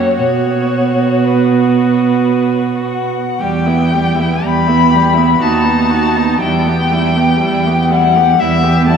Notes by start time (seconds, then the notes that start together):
Already playing: F#2 A#3 F#4 C#5
0.16 B2 B3 F#4 C#5
1.24 B4
2.87 F#5
3.39 E2 G3 G4 G5
3.66 B3 E4
3.91 G3 G4
4.15 E4
4.19 B3
4.42 E2 G3 G4 B5
4.67 B3 E4
4.90 G4
4.95 G3
5.14 B3 E4
5.40 D#2 D#4 F#4 A5
5.64 B3 D#4
5.90 D#4 F#4
6.17 B3 D#4
6.41 E2 G3 E4 G5
6.67 B3 G4
6.92 G3 E4
7.16 B3 G4
7.41 E2 G3 E4
7.67 B3 G4
7.90 G3 E4 F#5
8.16 B3 G4
8.38 E2 G3 E4 E5
8.63 B3 G4
8.87 G3 E4 A5